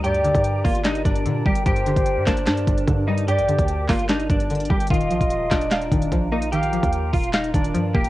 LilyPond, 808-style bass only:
\new Staff \with { instrumentName = "808-style bass" } { \clef bass \time 4/4 \key g \minor \tempo 4 = 148 d,8. g,8. g,,4 g,,8 bes,8 g,,8 | g,,8. g,,8 g,16 g,,8 g,8 g,,8 g,4~ | g,16 a,,16 g,16 d,8. g,,4 g,,4 g,,8 | ees,,8 bes,,16 ees,,8. ees,,4 ees,,8 bes,,4~ |
bes,,8. ees,8. ees,,4 ees,,8 g,8 ees,,8 | }